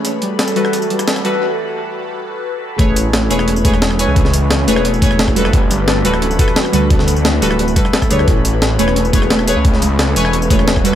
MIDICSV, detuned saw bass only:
0, 0, Header, 1, 2, 480
1, 0, Start_track
1, 0, Tempo, 342857
1, 67, Time_signature, 4, 2, 24, 8
1, 15331, End_track
2, 0, Start_track
2, 0, Title_t, "Detuned saw bass"
2, 0, Program_c, 0, 39
2, 3908, Note_on_c, 0, 33, 103
2, 4609, Note_off_c, 0, 33, 0
2, 4628, Note_on_c, 0, 28, 101
2, 5089, Note_off_c, 0, 28, 0
2, 5107, Note_on_c, 0, 28, 91
2, 5689, Note_off_c, 0, 28, 0
2, 5709, Note_on_c, 0, 37, 99
2, 6529, Note_off_c, 0, 37, 0
2, 6548, Note_on_c, 0, 28, 100
2, 7008, Note_off_c, 0, 28, 0
2, 7028, Note_on_c, 0, 28, 82
2, 7627, Note_on_c, 0, 31, 99
2, 7648, Note_off_c, 0, 28, 0
2, 8448, Note_off_c, 0, 31, 0
2, 8467, Note_on_c, 0, 26, 102
2, 8928, Note_off_c, 0, 26, 0
2, 9429, Note_on_c, 0, 38, 99
2, 10369, Note_off_c, 0, 38, 0
2, 10388, Note_on_c, 0, 26, 97
2, 10849, Note_off_c, 0, 26, 0
2, 11347, Note_on_c, 0, 38, 83
2, 11563, Note_off_c, 0, 38, 0
2, 11587, Note_on_c, 0, 33, 101
2, 12288, Note_off_c, 0, 33, 0
2, 12308, Note_on_c, 0, 28, 99
2, 12769, Note_off_c, 0, 28, 0
2, 12787, Note_on_c, 0, 28, 90
2, 13369, Note_off_c, 0, 28, 0
2, 13388, Note_on_c, 0, 37, 101
2, 14208, Note_off_c, 0, 37, 0
2, 14227, Note_on_c, 0, 28, 98
2, 14688, Note_off_c, 0, 28, 0
2, 14706, Note_on_c, 0, 28, 86
2, 15329, Note_off_c, 0, 28, 0
2, 15331, End_track
0, 0, End_of_file